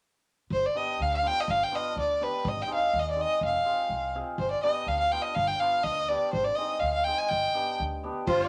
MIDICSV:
0, 0, Header, 1, 6, 480
1, 0, Start_track
1, 0, Tempo, 484653
1, 513, Time_signature, 2, 2, 24, 8
1, 8403, End_track
2, 0, Start_track
2, 0, Title_t, "Violin"
2, 0, Program_c, 0, 40
2, 523, Note_on_c, 0, 72, 86
2, 652, Note_on_c, 0, 74, 78
2, 667, Note_off_c, 0, 72, 0
2, 761, Note_on_c, 0, 75, 75
2, 776, Note_off_c, 0, 74, 0
2, 1009, Note_on_c, 0, 77, 87
2, 1024, Note_off_c, 0, 75, 0
2, 1120, Note_off_c, 0, 77, 0
2, 1129, Note_on_c, 0, 77, 75
2, 1261, Note_on_c, 0, 79, 102
2, 1276, Note_off_c, 0, 77, 0
2, 1388, Note_on_c, 0, 75, 76
2, 1403, Note_off_c, 0, 79, 0
2, 1492, Note_on_c, 0, 77, 84
2, 1507, Note_off_c, 0, 75, 0
2, 1622, Note_on_c, 0, 79, 76
2, 1637, Note_off_c, 0, 77, 0
2, 1736, Note_on_c, 0, 75, 77
2, 1751, Note_off_c, 0, 79, 0
2, 1964, Note_off_c, 0, 75, 0
2, 1978, Note_on_c, 0, 74, 78
2, 2210, Note_on_c, 0, 71, 69
2, 2225, Note_off_c, 0, 74, 0
2, 2465, Note_on_c, 0, 75, 73
2, 2479, Note_off_c, 0, 71, 0
2, 2596, Note_on_c, 0, 79, 79
2, 2611, Note_off_c, 0, 75, 0
2, 2693, Note_off_c, 0, 79, 0
2, 2716, Note_on_c, 0, 77, 79
2, 2965, Note_on_c, 0, 75, 88
2, 2980, Note_off_c, 0, 77, 0
2, 3058, Note_off_c, 0, 75, 0
2, 3081, Note_on_c, 0, 74, 67
2, 3183, Note_on_c, 0, 75, 85
2, 3197, Note_off_c, 0, 74, 0
2, 3407, Note_off_c, 0, 75, 0
2, 3419, Note_on_c, 0, 77, 74
2, 4086, Note_off_c, 0, 77, 0
2, 4352, Note_on_c, 0, 72, 70
2, 4464, Note_off_c, 0, 72, 0
2, 4470, Note_on_c, 0, 74, 69
2, 4583, Note_off_c, 0, 74, 0
2, 4589, Note_on_c, 0, 75, 71
2, 4836, Note_on_c, 0, 77, 80
2, 4851, Note_off_c, 0, 75, 0
2, 4943, Note_off_c, 0, 77, 0
2, 4949, Note_on_c, 0, 77, 77
2, 5066, Note_on_c, 0, 79, 84
2, 5081, Note_off_c, 0, 77, 0
2, 5173, Note_on_c, 0, 75, 74
2, 5188, Note_off_c, 0, 79, 0
2, 5300, Note_on_c, 0, 77, 87
2, 5314, Note_off_c, 0, 75, 0
2, 5423, Note_on_c, 0, 79, 78
2, 5438, Note_off_c, 0, 77, 0
2, 5543, Note_on_c, 0, 77, 81
2, 5557, Note_off_c, 0, 79, 0
2, 5782, Note_on_c, 0, 75, 91
2, 5797, Note_off_c, 0, 77, 0
2, 6026, Note_on_c, 0, 74, 82
2, 6041, Note_off_c, 0, 75, 0
2, 6266, Note_off_c, 0, 74, 0
2, 6272, Note_on_c, 0, 72, 81
2, 6384, Note_on_c, 0, 74, 80
2, 6398, Note_off_c, 0, 72, 0
2, 6492, Note_on_c, 0, 75, 75
2, 6507, Note_off_c, 0, 74, 0
2, 6731, Note_on_c, 0, 77, 83
2, 6746, Note_off_c, 0, 75, 0
2, 6863, Note_off_c, 0, 77, 0
2, 6868, Note_on_c, 0, 77, 81
2, 6976, Note_on_c, 0, 79, 89
2, 6990, Note_off_c, 0, 77, 0
2, 7111, Note_on_c, 0, 80, 81
2, 7126, Note_off_c, 0, 79, 0
2, 7220, Note_on_c, 0, 79, 89
2, 7235, Note_off_c, 0, 80, 0
2, 7708, Note_off_c, 0, 79, 0
2, 8195, Note_on_c, 0, 72, 86
2, 8326, Note_on_c, 0, 74, 81
2, 8341, Note_off_c, 0, 72, 0
2, 8403, Note_off_c, 0, 74, 0
2, 8403, End_track
3, 0, Start_track
3, 0, Title_t, "Accordion"
3, 0, Program_c, 1, 21
3, 8200, Note_on_c, 1, 65, 87
3, 8403, Note_off_c, 1, 65, 0
3, 8403, End_track
4, 0, Start_track
4, 0, Title_t, "Hammered dulcimer"
4, 0, Program_c, 2, 15
4, 740, Note_on_c, 2, 62, 50
4, 741, Note_on_c, 2, 59, 62
4, 744, Note_on_c, 2, 67, 66
4, 866, Note_off_c, 2, 62, 0
4, 867, Note_off_c, 2, 59, 0
4, 868, Note_off_c, 2, 67, 0
4, 1210, Note_on_c, 2, 59, 52
4, 1214, Note_on_c, 2, 62, 49
4, 1221, Note_on_c, 2, 65, 50
4, 1341, Note_off_c, 2, 59, 0
4, 1342, Note_off_c, 2, 62, 0
4, 1346, Note_off_c, 2, 65, 0
4, 1698, Note_on_c, 2, 59, 59
4, 1701, Note_on_c, 2, 62, 54
4, 1708, Note_on_c, 2, 65, 63
4, 1826, Note_off_c, 2, 62, 0
4, 1827, Note_off_c, 2, 59, 0
4, 1827, Note_off_c, 2, 65, 0
4, 2180, Note_on_c, 2, 59, 51
4, 2189, Note_on_c, 2, 62, 47
4, 2193, Note_on_c, 2, 67, 54
4, 2305, Note_off_c, 2, 59, 0
4, 2310, Note_off_c, 2, 62, 0
4, 2312, Note_off_c, 2, 67, 0
4, 2642, Note_on_c, 2, 63, 60
4, 2647, Note_on_c, 2, 60, 61
4, 2654, Note_on_c, 2, 68, 72
4, 2777, Note_off_c, 2, 63, 0
4, 2779, Note_off_c, 2, 60, 0
4, 2782, Note_off_c, 2, 68, 0
4, 3124, Note_on_c, 2, 60, 51
4, 3128, Note_on_c, 2, 63, 50
4, 3131, Note_on_c, 2, 68, 62
4, 3258, Note_off_c, 2, 60, 0
4, 3259, Note_off_c, 2, 63, 0
4, 3261, Note_off_c, 2, 68, 0
4, 3613, Note_on_c, 2, 60, 59
4, 3617, Note_on_c, 2, 65, 56
4, 3623, Note_on_c, 2, 68, 64
4, 3743, Note_off_c, 2, 60, 0
4, 3744, Note_off_c, 2, 65, 0
4, 3747, Note_off_c, 2, 68, 0
4, 4110, Note_on_c, 2, 60, 70
4, 4114, Note_on_c, 2, 65, 54
4, 4116, Note_on_c, 2, 68, 69
4, 4232, Note_off_c, 2, 60, 0
4, 4233, Note_off_c, 2, 65, 0
4, 4233, Note_off_c, 2, 68, 0
4, 4589, Note_on_c, 2, 59, 68
4, 4589, Note_on_c, 2, 62, 61
4, 4594, Note_on_c, 2, 67, 74
4, 4711, Note_off_c, 2, 59, 0
4, 4711, Note_off_c, 2, 62, 0
4, 4714, Note_off_c, 2, 67, 0
4, 5060, Note_on_c, 2, 59, 55
4, 5064, Note_on_c, 2, 62, 54
4, 5065, Note_on_c, 2, 65, 56
4, 5187, Note_off_c, 2, 59, 0
4, 5189, Note_off_c, 2, 62, 0
4, 5189, Note_off_c, 2, 65, 0
4, 5545, Note_on_c, 2, 59, 62
4, 5547, Note_on_c, 2, 62, 57
4, 5556, Note_on_c, 2, 65, 64
4, 5670, Note_off_c, 2, 59, 0
4, 5670, Note_off_c, 2, 62, 0
4, 5675, Note_off_c, 2, 65, 0
4, 6025, Note_on_c, 2, 62, 48
4, 6030, Note_on_c, 2, 59, 58
4, 6036, Note_on_c, 2, 67, 62
4, 6150, Note_off_c, 2, 62, 0
4, 6152, Note_off_c, 2, 59, 0
4, 6155, Note_off_c, 2, 67, 0
4, 6511, Note_on_c, 2, 60, 63
4, 6515, Note_on_c, 2, 63, 54
4, 6516, Note_on_c, 2, 68, 67
4, 6633, Note_off_c, 2, 60, 0
4, 6635, Note_off_c, 2, 63, 0
4, 6636, Note_off_c, 2, 68, 0
4, 6993, Note_on_c, 2, 60, 51
4, 7002, Note_on_c, 2, 63, 44
4, 7008, Note_on_c, 2, 68, 62
4, 7114, Note_off_c, 2, 60, 0
4, 7119, Note_off_c, 2, 63, 0
4, 7122, Note_off_c, 2, 68, 0
4, 7467, Note_on_c, 2, 59, 60
4, 7469, Note_on_c, 2, 62, 54
4, 7474, Note_on_c, 2, 67, 68
4, 7591, Note_off_c, 2, 59, 0
4, 7592, Note_off_c, 2, 62, 0
4, 7595, Note_off_c, 2, 67, 0
4, 7957, Note_on_c, 2, 59, 66
4, 7962, Note_on_c, 2, 67, 65
4, 7964, Note_on_c, 2, 62, 52
4, 8076, Note_off_c, 2, 59, 0
4, 8078, Note_off_c, 2, 67, 0
4, 8080, Note_off_c, 2, 62, 0
4, 8403, End_track
5, 0, Start_track
5, 0, Title_t, "Upright bass"
5, 0, Program_c, 3, 32
5, 499, Note_on_c, 3, 31, 84
5, 647, Note_off_c, 3, 31, 0
5, 990, Note_on_c, 3, 38, 66
5, 1278, Note_off_c, 3, 38, 0
5, 1465, Note_on_c, 3, 31, 92
5, 1611, Note_off_c, 3, 31, 0
5, 1941, Note_on_c, 3, 38, 65
5, 2232, Note_off_c, 3, 38, 0
5, 2425, Note_on_c, 3, 32, 94
5, 2571, Note_off_c, 3, 32, 0
5, 2906, Note_on_c, 3, 39, 68
5, 3196, Note_off_c, 3, 39, 0
5, 3378, Note_on_c, 3, 29, 82
5, 3526, Note_off_c, 3, 29, 0
5, 3856, Note_on_c, 3, 36, 68
5, 4149, Note_off_c, 3, 36, 0
5, 4339, Note_on_c, 3, 31, 83
5, 4487, Note_off_c, 3, 31, 0
5, 4819, Note_on_c, 3, 38, 67
5, 5112, Note_off_c, 3, 38, 0
5, 5311, Note_on_c, 3, 31, 90
5, 5456, Note_off_c, 3, 31, 0
5, 5784, Note_on_c, 3, 38, 78
5, 6075, Note_off_c, 3, 38, 0
5, 6269, Note_on_c, 3, 32, 82
5, 6415, Note_off_c, 3, 32, 0
5, 6751, Note_on_c, 3, 38, 65
5, 7040, Note_off_c, 3, 38, 0
5, 7239, Note_on_c, 3, 31, 81
5, 7382, Note_off_c, 3, 31, 0
5, 7722, Note_on_c, 3, 38, 71
5, 8008, Note_off_c, 3, 38, 0
5, 8195, Note_on_c, 3, 31, 94
5, 8339, Note_off_c, 3, 31, 0
5, 8403, End_track
6, 0, Start_track
6, 0, Title_t, "Drums"
6, 8192, Note_on_c, 9, 49, 64
6, 8194, Note_on_c, 9, 36, 71
6, 8291, Note_off_c, 9, 49, 0
6, 8293, Note_off_c, 9, 36, 0
6, 8315, Note_on_c, 9, 38, 25
6, 8403, Note_off_c, 9, 38, 0
6, 8403, End_track
0, 0, End_of_file